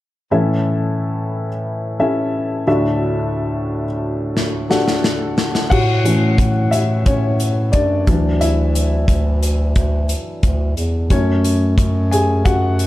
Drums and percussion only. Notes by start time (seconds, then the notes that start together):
4.37 snare
4.71 snare
4.88 snare
5.04 snare
5.38 snare
5.55 snare
5.71 kick, crash
6.05 closed hi-hat
6.38 kick, closed hi-hat
6.72 closed hi-hat
7.06 kick, closed hi-hat
7.40 closed hi-hat
7.73 kick, closed hi-hat
8.07 kick, closed hi-hat
8.41 closed hi-hat
8.75 closed hi-hat
9.08 kick, closed hi-hat
9.43 closed hi-hat
9.76 kick, closed hi-hat
10.09 closed hi-hat
10.43 kick, closed hi-hat
10.77 closed hi-hat
11.10 kick, closed hi-hat
11.44 closed hi-hat
11.78 kick, closed hi-hat
12.12 closed hi-hat
12.45 kick, closed hi-hat
12.79 closed hi-hat